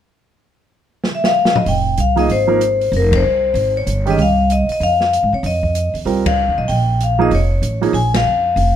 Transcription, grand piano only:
2.16 2.28 F3 medium
2.16 2.28 A#3 soft
2.16 2.28 D#4 soft
2.16 2.28 G#4 medium
2.47 2.59 F3 medium
2.47 2.59 A#3 medium
2.47 2.59 D#4 medium
2.47 2.60 A#4 medium
4.06 4.17 D#3 medium
4.06 4.17 G#3 soft
4.06 4.17 C#4 medium
4.06 4.17 G4 medium
6.05 6.23 G3 soft
6.05 6.23 C4 soft
6.05 6.23 F4 soft
6.05 6.24 A#4 medium
7.18 7.29 F3 medium
7.18 7.30 A#3 medium
7.18 7.30 D#4 medium
7.18 7.30 G#4 medium
7.81 7.92 F3 medium
7.81 7.92 A#3 medium
7.81 7.92 D#4 medium
7.81 7.93 G#4 medium

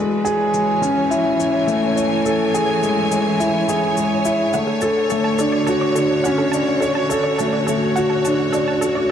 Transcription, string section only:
0.00 4.54 E3 medium
0.00 1.80 F#4 medium
0.00 1.07 B4 medium
0.31 9.12 C#5 medium
0.60 5.67 G#5 medium
4.54 9.11 D3 medium
5.39 9.12 F#4 medium

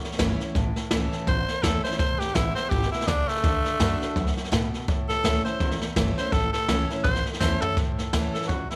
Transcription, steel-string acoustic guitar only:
0.00 0.53 E2 medium
0.19 0.39 E3 medium
0.19 0.40 A3 loud
0.19 0.40 C#4 loud
0.19 0.39 E4 loud
0.40 0.56 C#4 medium
0.40 0.55 E4 medium
0.56 1.25 A2 medium
0.91 1.26 E3 loud
0.91 1.26 A3 loud
0.91 1.27 C#4 medium
0.91 1.27 E4 medium
1.28 1.97 E2 medium
1.64 1.84 E3 medium
1.64 1.84 A3 medium
1.64 1.85 C#4 medium
1.64 1.83 E4 medium
1.85 2.00 C#4 soft
1.85 1.99 E4 medium
2.00 2.69 E2 loud
2.35 2.55 E3 medium
2.35 2.56 G#3 medium
2.35 2.56 B3 medium
2.35 2.55 E4 loud
2.56 2.72 B3 soft
2.56 2.71 E4 medium
2.72 3.07 B2 medium
3.08 3.42 C#3 medium
3.44 3.79 D3 medium
3.80 4.00 D3 medium
3.80 4.01 A3 medium
3.80 4.01 D4 loud
3.80 4.00 F#4 loud
4.01 4.17 D4 medium
4.01 4.16 F#4 medium
4.17 4.51 F#2 medium
4.52 4.87 B2 medium
4.88 5.57 A2 medium
5.24 5.44 E3 medium
5.24 5.45 A3 medium
5.24 5.45 C#4 loud
5.24 5.44 E4 loud
5.45 5.61 C#4 soft
5.45 5.59 E4 medium
5.61 6.30 E2 medium
5.96 6.17 E3 loud
5.96 6.17 A3 medium
5.96 6.17 C#4 medium
5.96 6.17 E4 loud
6.18 6.33 C#4 medium
6.18 6.32 E4 medium
6.33 7.02 A2 loud
6.69 6.89 E3 medium
6.69 6.90 A3 medium
6.69 6.90 C#4 loud
6.69 6.89 E4 loud
6.91 7.05 C#4 medium
6.91 7.05 E4 medium
7.04 7.74 E2 medium
7.41 7.61 E3 medium
7.41 7.61 A3 medium
7.41 7.62 C#4 loud
7.41 7.61 E4 loud
7.62 7.78 C#4 medium
7.62 7.77 E4 medium
7.78 8.46 A2 medium
8.13 8.48 E3 medium
8.13 8.48 A3 medium
8.13 8.48 C#4 loud
8.13 8.49 E4 loud
8.50 8.76 E2 medium

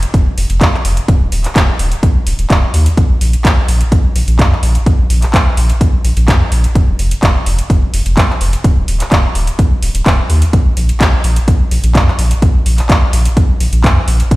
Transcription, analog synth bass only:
0.14 0.29 F1 medium
0.37 0.45 F1 medium
0.50 0.63 F1 medium
0.61 0.76 C2 medium
0.85 0.99 F1 loud
1.08 1.16 D#1 loud
1.21 1.28 D#1 medium
1.32 1.47 D#1 medium
1.56 1.70 D#1 medium
1.79 1.94 D#1 medium
2.03 2.18 A#1 medium
2.27 2.34 D#1 medium
2.39 2.46 D#1 loud
2.50 2.65 D#1 loud
2.74 2.88 D#2 medium
2.97 3.05 A#1 loud
3.10 3.17 A#1 medium
3.21 3.36 A#1 medium
3.45 3.59 A#1 medium
3.68 3.83 A#1 medium
3.92 4.07 A#1 medium
4.16 4.23 A#1 medium
4.28 4.41 A#1 medium
4.39 4.54 F2 medium
4.63 4.77 A#1 loud
4.86 4.94 A#1 loud
4.99 5.06 A#1 medium
5.10 5.25 A#1 medium
5.34 5.48 A#1 medium
5.57 5.72 A#1 medium
5.81 5.96 A#1 medium
6.05 6.12 A#1 medium
6.17 6.30 A#1 medium
6.28 6.43 F2 medium
6.52 6.66 A#1 loud
6.75 6.83 F1 medium
6.88 6.95 F1 medium
6.99 7.14 F1 medium
7.23 7.37 F1 medium
7.46 7.61 F1 medium
7.70 7.85 F1 medium
7.94 8.01 F1 medium
8.06 8.19 F1 medium
8.17 8.32 C2 medium
8.41 8.55 F1 loud
8.64 8.72 D#1 medium
8.76 8.83 D#1 medium
8.88 9.03 D#1 medium
9.12 9.26 D#1 medium
9.35 9.50 D#1 medium
9.59 9.73 A#1 medium
9.82 9.90 D#1 medium
9.94 10.02 D#1 loud
10.06 10.21 D#1 loud
10.30 10.44 D#2 medium
10.53 10.61 A#1 medium
10.65 10.72 A#1 medium
10.77 10.91 A#1 medium
11.01 11.15 A#1 medium
11.24 11.39 A#1 medium
11.48 11.62 A#1 medium
11.71 11.79 A#1 medium
11.84 11.96 A#1 medium
11.95 12.10 F2 medium
12.19 12.33 A#1 loud
12.42 12.50 A#1 loud
12.54 12.61 A#1 medium
12.66 12.81 A#1 medium
12.90 13.04 A#1 medium
13.13 13.28 A#1 medium
13.37 13.51 A#1 medium
13.60 13.68 A#1 medium
13.73 13.85 A#1 medium
13.84 13.99 F2 medium
14.08 14.22 A#1 loud
14.31 14.36 F1 medium

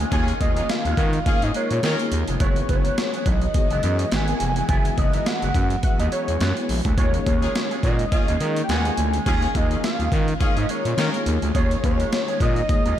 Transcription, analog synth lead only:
0.13 0.25 G#5 loud
0.41 0.71 D#5 loud
0.70 1.27 F5 loud
1.27 1.45 F5 loud
1.43 1.55 D#5 medium
1.56 2.09 C#5 medium
2.42 2.68 C#5 medium
2.70 3.29 C#5 loud
3.27 4.14 D#5 loud
4.13 4.69 G#5 loud
4.70 4.96 G#5 loud
4.98 5.29 D#5 loud
5.27 5.83 F#5 loud
5.84 5.99 F#5 loud
6.00 6.11 D#5 medium
6.12 6.65 C#5 medium
6.98 7.24 C#5 medium
7.27 7.80 C#5 loud
7.84 8.59 D#5 loud
8.64 8.71 G5 medium
8.70 9.27 G#5 loud
9.27 9.58 G#5 loud
9.56 9.84 D#5 loud
9.85 10.37 F5 loud
10.42 10.59 F5 loud
10.58 10.70 D#5 medium
10.71 11.23 C#5 medium
11.56 11.82 C#5 medium
11.85 12.37 C#5 loud
12.42 12.99 D#5 loud

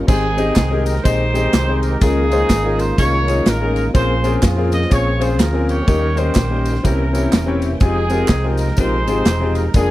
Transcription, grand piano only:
0.07 0.82 G#2 medium
0.07 0.25 C4 medium
0.07 0.25 D#4 medium
0.07 0.25 G4 medium
0.07 0.25 G#4 medium
0.07 0.25 C5 medium
0.37 0.53 C4 medium
0.37 0.53 D#4 medium
0.37 0.53 G4 medium
0.37 0.54 G#4 medium
0.37 0.54 D#5 loud
0.71 0.92 C4 medium
0.71 0.93 D#4 medium
0.71 0.93 G4 medium
0.71 0.93 G#4 medium
0.71 0.93 A#4 medium
1.04 1.21 C4 medium
1.04 1.22 D#4 medium
1.04 1.22 G4 medium
1.04 1.22 G#4 medium
1.04 1.22 D#5 medium
1.34 1.50 C4 medium
1.34 1.51 D#4 medium
1.34 1.51 G4 medium
1.34 1.51 G#4 medium
1.34 1.51 D#5 medium
1.67 1.89 C4 medium
1.67 1.90 D#4 medium
1.67 1.90 G4 medium
1.67 1.90 G#4 medium
1.67 1.90 C5 medium
2.01 2.76 C#3 medium
2.01 2.18 C#4 medium
2.01 2.19 D#4 medium
2.01 2.19 F4 medium
2.01 2.19 G#4 medium
2.01 2.19 A#4 medium
2.31 2.47 C#4 medium
2.31 2.47 D#4 medium
2.31 2.47 F4 medium
2.31 2.48 G#4 medium
2.31 2.48 C5 medium
2.64 2.86 C#4 medium
2.64 2.86 D#4 medium
2.64 2.86 F4 medium
2.64 2.87 G#4 medium
2.64 2.87 A#4 medium
2.98 3.15 C#4 medium
2.98 3.15 D#4 medium
2.98 3.16 F4 medium
2.98 3.16 G#4 medium
2.98 3.16 C#5 medium
3.27 3.43 C#4 medium
3.27 3.44 D#4 medium
3.27 3.44 F4 medium
3.27 3.44 G#4 medium
3.27 3.44 C#5 medium
3.61 3.82 C#4 medium
3.61 3.83 D#4 medium
3.61 3.83 F4 medium
3.61 3.83 G#4 medium
3.61 3.83 A#4 medium
3.94 4.69 A#2 medium
3.94 4.11 C4 medium
3.94 4.11 C#4 medium
3.94 4.12 F4 medium
3.94 4.12 G#4 medium
3.94 4.12 A#4 medium
4.24 4.40 C4 medium
4.24 4.40 C#4 medium
4.24 4.40 F4 medium
4.24 4.41 G#4 medium
4.24 4.41 A#4 medium
4.56 4.79 C4 medium
4.56 4.79 C#4 medium
4.56 4.79 F4 medium
4.56 4.79 G#4 medium
4.56 4.80 A#4 medium
4.89 5.07 C4 medium
4.89 5.08 C#4 medium
4.89 5.08 F4 medium
4.89 5.08 G#4 medium
4.89 5.08 C#5 medium
5.20 5.36 C4 medium
5.20 5.36 C#4 medium
5.20 5.37 F4 medium
5.20 5.37 G#4 medium
5.20 5.37 C5 medium
5.53 5.75 C4 medium
5.53 5.75 C#4 medium
5.53 5.76 F4 medium
5.53 5.76 G#4 medium
5.53 5.76 A#4 medium
5.87 6.62 D#3 medium
5.87 6.04 A#3 medium
5.87 6.04 C#4 medium
5.87 6.05 D#4 medium
5.87 6.05 G4 medium
5.87 6.05 A#4 medium
6.16 6.33 A#3 medium
6.16 6.33 C#4 medium
6.16 6.33 D#4 medium
6.16 6.34 G4 medium
6.16 6.34 C5 medium
6.50 6.72 A#3 medium
6.50 6.72 C#4 medium
6.50 6.72 D#4 medium
6.50 6.73 G4 medium
6.50 6.73 A#4 medium
6.83 7.58 C3 medium
6.83 7.01 C4 medium
6.83 7.01 C#4 medium
6.83 7.01 E4 medium
6.83 7.02 G4 medium
6.83 7.02 A#4 medium
7.13 7.29 C4 medium
7.13 7.30 C#4 medium
7.13 7.30 E4 medium
7.13 7.30 G4 medium
7.13 7.30 C#5 medium
7.46 7.68 C4 medium
7.46 7.69 C#4 medium
7.46 7.69 E4 medium
7.46 7.69 G4 medium
7.46 7.69 C#5 medium
7.80 7.98 C4 medium
7.80 7.98 D#4 medium
7.80 7.98 F4 medium
7.80 7.98 G4 medium
7.80 7.99 G#4 medium
8.10 8.26 C4 medium
8.10 8.26 D#4 medium
8.10 8.27 F4 medium
8.10 8.27 G4 medium
8.10 8.27 A#4 medium
8.44 8.65 C4 medium
8.44 8.66 D#4 medium
8.44 8.66 F4 medium
8.44 8.66 G4 medium
8.44 8.66 A#4 medium
8.78 8.94 C4 medium
8.78 8.95 D#4 medium
8.78 8.95 F4 medium
8.78 8.95 G4 medium
8.78 8.95 A#4 medium
9.07 9.23 C4 medium
9.07 9.23 D#4 medium
9.07 9.24 F4 medium
9.07 9.24 G4 medium
9.07 9.24 G#4 medium
9.40 9.62 C4 medium
9.40 9.62 D#4 medium
9.40 9.62 F4 medium
9.40 9.63 G4 medium
9.40 9.63 G#4 medium
9.75 9.91 A#3 medium
9.75 9.91 D4 medium
9.75 9.91 F4 medium
9.75 9.91 G#4 medium
9.75 9.91 A#4 medium

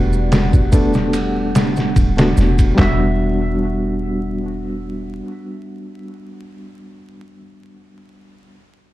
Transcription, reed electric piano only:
0.00 0.72 A3 medium
0.00 0.73 B3 medium
0.00 0.74 D4 medium
0.00 0.70 F#4 medium
0.00 2.80 B4 medium
0.72 1.50 A3 medium
0.72 1.51 B3 medium
0.72 1.51 D4 medium
0.72 1.51 A4 loud
2.17 2.73 A3 medium
2.17 2.74 B3 medium
2.17 2.74 D4 medium
2.17 2.75 F#4 medium
2.75 6.89 G3 medium
2.75 6.92 B3 medium
2.79 6.94 D4 medium
2.79 6.96 F#4 loud

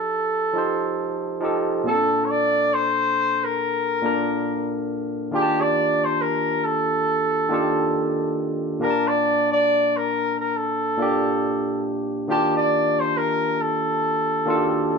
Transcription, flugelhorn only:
0.00 1.39 A4 medium
1.87 2.26 A4 loud
2.25 2.32 C#5 medium
2.30 2.75 D5 loud
2.74 3.46 C5 loud
3.44 4.74 A#4 medium
5.35 5.63 G4 loud
5.61 6.06 D5 loud
6.05 6.23 C5 loud
6.21 6.66 A#4 loud
6.64 8.38 A4 loud
8.83 9.10 A#4 loud
9.08 9.51 D5 loud
9.52 9.98 D5 loud
9.97 10.39 A#4 loud
10.39 10.58 A#4 medium
10.57 11.86 A4 medium
12.31 12.54 G4 loud
12.57 13.02 D5 loud
13.00 13.19 C5 loud
13.17 13.63 A#4 loud
13.61 14.98 A4 medium

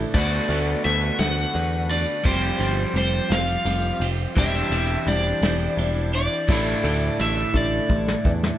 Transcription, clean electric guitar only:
0.00 0.13 A2 medium
0.00 0.13 D3 medium
0.00 0.14 A3 medium
0.00 0.14 D4 medium
0.00 0.15 E4 loud
0.14 2.23 D3 medium
0.14 2.24 A3 loud
0.14 2.24 B3 loud
0.14 2.25 F#4 medium
2.24 4.34 F3 loud
2.24 4.34 G3 medium
2.24 4.35 C4 loud
2.24 4.35 G4 loud
4.36 6.45 E3 medium
4.36 6.46 C4 medium
4.36 6.51 D4 loud
4.36 6.47 G4 loud
6.48 8.58 A2 medium
6.48 8.58 D3 medium
6.48 8.58 A3 medium
6.48 8.58 D4 loud
6.48 8.58 E4 loud

